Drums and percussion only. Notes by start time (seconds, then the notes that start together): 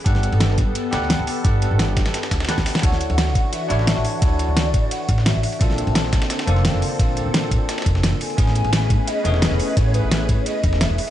0.06 kick, closed hi-hat, ride
0.15 snare
0.23 closed hi-hat, ride
0.33 ride
0.40 snare, closed hi-hat, ride
0.50 snare
0.58 kick, closed hi-hat, ride
0.75 closed hi-hat, ride
0.93 snare, closed hi-hat, ride
1.02 snare
1.10 snare, closed hi-hat, ride
1.27 open hi-hat, ride
1.45 kick, closed hi-hat, ride
1.62 closed hi-hat, ride
1.79 snare, closed hi-hat, ride
1.97 kick, snare, closed hi-hat, ride
2.06 snare, ride
2.14 snare, closed hi-hat, ride
2.23 snare, ride
2.31 kick, snare, closed hi-hat, ride
2.40 snare, ride
2.45 snare, ride
2.49 snare, closed hi-hat, ride
2.58 kick, snare
2.66 snare, open hi-hat, ride
2.75 snare, ride
2.79 snare, ride
2.83 kick, closed hi-hat, ride, ride bell
2.92 snare
3.01 closed hi-hat, ride, ride bell
3.10 ride
3.18 snare, closed hi-hat, ride, ride bell
3.27 snare
3.35 kick, closed hi-hat, ride, ride bell
3.53 closed hi-hat, ride, ride bell
3.70 closed hi-hat, ride, ride bell
3.79 snare
3.87 snare, closed hi-hat, ride, ride bell
3.96 snare
4.05 open hi-hat, ride, ride bell
4.22 kick, closed hi-hat, ride, ride bell
4.39 closed hi-hat, ride, ride bell
4.57 snare, closed hi-hat, ride, ride bell
4.74 kick, closed hi-hat, ride, ride bell
4.91 closed hi-hat, ride, ride bell
5.09 kick, closed hi-hat, ride, ride bell
5.18 snare
5.26 snare, closed hi-hat, ride, ride bell
5.43 open hi-hat, ride, ride bell
5.52 ride
5.61 kick, closed hi-hat, ride, ride bell
5.70 snare
5.78 closed hi-hat, ride, ride bell
5.87 ride
5.95 snare, closed hi-hat, ride, ride bell
6.04 snare
6.13 kick, snare, closed hi-hat, ride, ride bell
6.22 snare, ride
6.30 snare, closed hi-hat, ride, ride bell
6.39 snare, ride
6.47 closed hi-hat, ride, ride bell
6.56 snare
6.65 snare, closed hi-hat, ride, ride bell
6.74 snare
6.82 open hi-hat, ride, ride bell
6.99 kick, closed hi-hat, ride, ride bell
7.17 closed hi-hat, ride, ride bell
7.34 snare, closed hi-hat, ride, ride bell
7.51 kick, closed hi-hat, ride, ride bell
7.69 snare, closed hi-hat, ride, ride bell
7.78 snare, ride
7.82 snare, ride
7.86 kick, closed hi-hat, ride, ride bell
7.95 snare
8.03 snare, closed hi-hat, ride, ride bell
8.21 open hi-hat, ride, ride bell
8.30 ride
8.38 kick, closed hi-hat, ride, ride bell
8.47 snare
8.55 closed hi-hat, ride, ride bell
8.64 ride
8.73 snare, closed hi-hat, ride, ride bell
8.82 snare
8.90 kick, closed hi-hat, ride, ride bell
9.07 closed hi-hat, ride, ride bell
9.25 closed hi-hat, ride, ride bell
9.34 snare
9.42 snare, closed hi-hat, ride, ride bell
9.51 snare
9.59 open hi-hat, ride, ride bell
9.77 kick, closed hi-hat, ride, ride bell
9.94 closed hi-hat, ride, ride bell
10.11 snare, closed hi-hat, ride, ride bell
10.29 kick, closed hi-hat, ride, ride bell
10.46 closed hi-hat, ride, ride bell
10.64 kick, closed hi-hat, ride, ride bell
10.73 snare
10.81 snare, closed hi-hat, ride, ride bell
10.98 open hi-hat, ride, ride bell